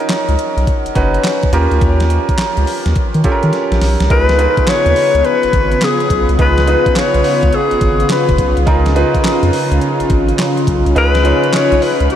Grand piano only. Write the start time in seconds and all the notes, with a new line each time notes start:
Already playing: C#4 D#4 F#4 A#4
0.95 C#4 D#4 F#4 B4
1.52 C#4 F4 G4 A#4
3.24 C#4 F4 G4 A4
3.32 A#4
4.10 D#4 F4 G#4 B4
4.38 D#4 F4 G#4 B4
6.38 D#4 F4 G#4 B4
6.67 D#4 F4 G#4 B4
8.66 D#4 F4 G#4 A#4
8.95 D#4 F4 G#4 B4
10.95 D#4 F4 G#4 B4
11.24 D#4 F4 G#4 C#5